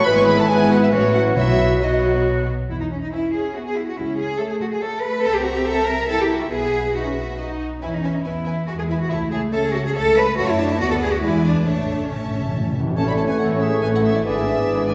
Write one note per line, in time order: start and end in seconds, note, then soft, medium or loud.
0.05 0.89 G#1 medium
0.05 0.89 G#2 medium
0.05 0.46 E3 medium
0.05 0.46 G#3 medium
0.05 0.46 B3 medium
0.05 0.46 E4 medium
0.05 0.11 B4 loud
0.05 0.37 B4 medium
0.05 0.46 B4 medium
0.05 0.17 B5 loud
0.05 0.12 B5 loud
0.17 0.22 C#5 loud
0.17 0.22 C#6 medium
0.17 0.28 C#6 medium
0.26 0.39 B4 loud
0.26 0.38 B5 loud
0.26 0.40 B5 medium
0.38 0.50 A4 medium
0.38 0.49 A5 loud
0.38 0.52 A5 medium
0.48 0.92 E3 medium
0.48 0.91 G#3 medium
0.48 0.91 B3 medium
0.48 0.92 B3 medium
0.48 0.91 E4 medium
0.48 0.71 G#4 loud
0.48 0.91 B4 medium
0.48 0.70 G#5 loud
0.48 0.71 G#5 loud
0.70 0.82 F#4 medium
0.70 0.82 F#5 medium
0.70 0.77 F#5 medium
0.80 0.93 E4 medium
0.80 0.87 E5 medium
0.80 0.96 E5 medium
0.91 1.37 A1 medium
0.91 1.37 A2 medium
0.91 1.38 E3 medium
0.91 1.35 F#3 medium
0.91 1.15 C#4 medium
0.91 1.36 C#4 medium
0.91 1.35 E4 medium
0.91 1.36 E4 medium
0.91 1.35 F#4 medium
0.91 1.15 C#5 loud
0.91 1.17 C#5 medium
1.14 1.35 F#4 medium
1.14 1.23 F#5 loud
1.14 1.40 F#5 medium
1.35 2.46 B1 medium
1.35 1.99 B2 medium
1.35 2.47 B2 medium
1.35 1.80 F#3 medium
1.35 1.80 B3 medium
1.35 1.82 E4 medium
1.35 1.80 F#4 medium
1.35 1.80 E5 loud
1.35 1.85 E5 medium
1.80 2.45 F#3 medium
1.80 2.46 F#3 medium
1.80 2.47 F#3 medium
1.80 2.47 B3 medium
1.80 2.25 D#4 medium
1.80 2.46 F#4 medium
1.80 2.47 F#4 medium
1.80 2.25 D#5 medium
1.80 2.26 D#5 medium
2.69 3.03 E2 medium
2.69 2.79 E4 medium
2.80 2.85 D#4 medium
2.91 3.01 C#4 medium
3.02 3.12 D#4 medium
3.12 3.52 C#4 medium
3.12 3.33 E4 medium
3.12 3.44 B4 soft
3.12 3.44 E5 soft
3.12 3.44 G#5 medium
3.33 3.54 G#4 medium
3.54 3.98 B3 medium
3.54 3.66 F#4 medium
3.54 3.86 B4 soft
3.54 3.86 E5 soft
3.54 3.87 G#5 soft
3.66 3.76 G#4 medium
3.76 3.87 E4 medium
3.87 3.97 F#4 medium
3.97 4.31 C#2 medium
3.97 4.39 C#4 medium
3.97 4.18 E4 medium
4.18 4.39 G#4 medium
4.39 4.81 A3 medium
4.39 4.50 A4 medium
4.39 4.71 C#5 medium
4.39 4.71 E5 medium
4.39 4.72 A5 medium
4.50 4.54 G#4 medium
4.60 4.65 F#4 medium
4.71 4.81 G#4 medium
4.81 5.23 A3 medium
4.81 5.02 A4 medium
4.81 5.13 C#5 medium
4.81 5.13 E5 medium
4.81 5.13 A5 medium
5.02 5.24 B4 medium
5.23 6.47 C2 medium
5.23 6.09 C4 medium
5.23 5.35 A4 loud
5.23 6.48 A#4 medium
5.23 6.48 E5 medium
5.23 6.05 A#5 medium
5.34 5.45 G4 medium
5.44 5.55 F#4 medium
5.55 5.66 G4 medium
5.66 5.87 A4 loud
5.87 6.08 A#4 medium
6.08 6.51 E4 medium
6.08 6.19 A4 loud
6.08 6.50 G5 medium
6.20 6.30 G4 medium
6.30 6.41 F#4 medium
6.42 6.52 E4 medium
6.51 7.60 B1 medium
6.51 6.90 B3 medium
6.51 6.95 G#4 medium
6.51 6.93 B4 medium
6.51 6.93 E5 medium
6.51 6.94 F#5 medium
6.94 7.05 D#4 medium
6.94 7.61 F#4 medium
6.94 7.38 B4 medium
6.94 7.38 E5 soft
6.94 7.36 F#5 soft
7.06 7.17 C#4 soft
7.18 7.28 B3 medium
7.29 7.40 C#4 medium
7.37 7.82 D#4 medium
7.37 7.47 B4 soft
7.37 7.62 D#5 medium
7.37 7.45 F#5 soft
7.82 8.20 E2 medium
7.82 8.23 C#4 medium
7.82 7.93 E4 medium
7.82 7.91 B4 medium
7.82 7.91 E5 soft
7.82 7.90 G#5 soft
7.94 8.04 D#4 medium
8.04 8.15 C#4 medium
8.04 8.12 B4 soft
8.04 8.12 E5 soft
8.04 8.12 G#5 soft
8.15 8.26 D#4 medium
8.25 8.63 E2 medium
8.25 8.68 B3 medium
8.25 8.67 E4 medium
8.25 8.33 B4 soft
8.25 8.33 E5 soft
8.25 8.33 G#5 soft
8.46 8.54 B4 soft
8.46 8.54 E5 soft
8.46 8.55 G#5 soft
8.67 9.06 E2 medium
8.67 9.10 G#3 medium
8.67 8.72 F#4 medium
8.67 8.75 B4 soft
8.67 8.75 E5 soft
8.67 8.76 G#5 soft
8.79 8.83 G#4 medium
8.89 9.00 E4 medium
8.89 8.97 B4 soft
8.89 8.98 E5 soft
8.89 8.98 G#5 medium
9.00 9.10 F#4 medium
9.10 9.48 C#2 medium
9.10 9.53 A3 medium
9.10 9.32 E4 medium
9.10 9.18 C#5 medium
9.10 9.18 E5 medium
9.10 9.20 A5 medium
9.31 9.39 G#4 medium
9.31 9.40 C#5 soft
9.31 9.39 E5 medium
9.31 9.41 A5 medium
9.52 9.91 C#2 medium
9.52 9.96 C#4 medium
9.52 9.64 A4 medium
9.52 9.61 C#5 medium
9.52 9.60 E5 medium
9.52 9.62 A5 medium
9.64 9.75 G#4 medium
9.73 9.85 F#4 medium
9.73 9.82 C#5 medium
9.73 9.81 E5 medium
9.73 9.83 A5 medium
9.85 9.96 G#4 medium
9.95 10.33 C#2 medium
9.95 10.37 A3 medium
9.95 10.16 A4 loud
9.95 10.03 C#5 medium
9.95 10.03 E5 medium
9.95 10.04 A5 medium
10.16 10.38 B4 loud
10.16 10.25 C#5 medium
10.16 10.25 E5 medium
10.16 10.25 A5 medium
10.37 10.77 F#2 medium
10.37 10.80 A3 medium
10.37 10.48 F#4 loud
10.37 10.77 C#5 medium
10.37 10.77 E5 medium
10.37 10.78 A5 medium
10.49 10.59 E4 medium
10.59 10.70 D4 medium
10.70 10.80 E4 loud
10.80 11.23 D2 medium
10.80 11.23 B3 medium
10.80 10.90 F#4 loud
10.80 11.21 B4 medium
10.80 11.22 D5 medium
10.80 11.23 F#5 medium
10.91 10.95 A4 medium
11.01 11.12 G#4 medium
11.12 11.23 F#4 medium
11.22 11.66 E2 medium
11.22 11.65 G#3 medium
11.22 11.44 E4 loud
11.22 11.65 B4 medium
11.22 11.65 D5 medium
11.22 11.65 G#5 medium
11.44 11.64 D4 medium
11.65 12.76 A1 medium
11.65 11.72 A2 soft
11.65 12.74 A3 medium
11.65 12.08 D4 medium
11.65 12.08 C#5 medium
11.65 12.08 E5 medium
11.65 12.08 A5 medium
11.73 11.80 A2 soft
11.81 11.88 A2 soft
11.89 11.95 A2 soft
11.97 12.03 A2 soft
12.04 12.10 A2 soft
12.09 12.18 A2 soft
12.09 12.74 C#4 medium
12.09 12.74 C#5 medium
12.09 12.74 E5 medium
12.09 12.74 A5 medium
12.19 12.25 A2 soft
12.26 12.32 A2 medium
12.34 12.40 A2 medium
12.41 12.47 A2 medium
12.49 12.55 A2 medium
12.57 12.63 A2 medium
12.64 12.71 A2 medium
12.72 12.79 A2 medium
12.80 12.86 A2 medium
12.87 12.94 A2 loud
12.94 13.35 A1 medium
12.94 13.57 A2 medium
12.94 13.35 A2 medium
12.94 14.94 E3 medium
12.94 13.06 A3 medium
12.94 14.21 A3 medium
12.94 14.20 C#4 medium
12.94 13.06 C#4 medium
12.94 13.07 C#4 medium
12.94 14.94 E4 medium
12.94 13.07 A4 medium
12.94 14.21 C#5 medium
12.94 13.01 C#5 medium
12.94 13.07 A5 medium
13.06 13.18 E3 medium
13.06 13.18 A3 medium
13.06 13.18 E4 medium
13.06 13.18 C#5 medium
13.06 13.20 D5 medium
13.06 13.12 B5 medium
13.17 13.29 A3 soft
13.17 13.29 C#4 soft
13.17 13.29 C#4 medium
13.17 13.29 A4 soft
13.17 13.31 C#5 medium
13.17 13.22 A5 medium
13.27 13.40 E3 medium
13.27 13.39 A3 medium
13.27 13.40 E4 soft
13.27 13.40 B4 medium
13.27 13.40 C#5 soft
13.27 13.39 G#5 medium
13.39 13.78 A1 medium
13.39 13.78 A2 medium
13.39 13.49 A3 medium
13.39 13.49 C#4 medium
13.39 13.50 C#4 medium
13.39 13.49 A4 medium
13.39 13.63 A4 medium
13.39 13.47 F#5 medium
13.50 13.61 E3 soft
13.50 13.61 A3 soft
13.50 13.61 E4 medium
13.50 13.61 C#5 medium
13.60 13.71 A3 medium
13.60 13.71 C#4 soft
13.60 13.72 C#4 medium
13.60 13.84 G#4 medium
13.60 13.72 A4 medium
13.60 13.82 E5 medium
13.71 13.83 E3 medium
13.71 13.81 A3 medium
13.71 13.82 E4 medium
13.71 13.82 C#5 soft
13.81 14.20 A1 medium
13.81 14.20 A2 medium
13.81 13.92 A3 medium
13.81 13.92 C#4 soft
13.81 13.93 C#4 medium
13.81 13.92 A4 medium
13.81 13.93 B4 medium
13.81 13.87 G#5 medium
13.92 14.04 E3 medium
13.92 14.03 A3 medium
13.92 14.03 E4 medium
13.92 14.04 A4 medium
13.92 14.03 C#5 soft
13.92 13.99 F#5 medium
14.03 14.14 A3 medium
14.03 14.14 C#4 medium
14.03 14.15 C#4 medium
14.03 14.09 G#4 medium
14.03 14.14 A4 medium
14.03 14.14 E5 medium
14.13 14.25 E3 soft
14.13 14.25 A3 soft
14.13 14.25 E4 medium
14.13 14.20 F#4 medium
14.13 14.24 C#5 soft
14.13 14.25 D5 medium
14.24 14.64 G#1 medium
14.24 14.63 G#2 medium
14.24 14.36 D3 medium
14.24 14.94 B3 medium
14.24 14.94 D4 medium
14.24 14.35 D4 medium
14.24 14.33 G#4 medium
14.24 14.91 G#4 medium
14.24 14.34 B4 medium
14.24 14.94 D5 medium
14.24 14.88 E5 medium
14.34 14.47 E3 medium
14.34 14.47 B3 medium
14.34 14.46 E4 medium
14.34 14.44 G#4 medium
14.44 14.58 D3 medium
14.44 14.58 D4 soft
14.44 14.54 G#4 medium
14.44 14.56 B4 medium
14.55 14.69 E3 medium
14.55 14.69 B3 medium
14.55 14.67 E4 medium
14.55 14.64 G#4 medium
14.65 14.94 G#1 medium
14.65 14.94 G#2 medium
14.65 14.75 G#4 medium
14.65 14.77 B4 medium
14.69 14.79 D3 medium
14.69 14.79 D4 medium
14.76 14.90 E3 soft
14.76 14.90 B3 soft
14.76 14.89 E4 soft
14.76 14.87 G#4 medium
14.87 14.94 D3 medium
14.87 14.94 D4 medium
14.87 14.94 G#4 soft
14.87 14.94 B4 medium
14.87 14.94 G#5 medium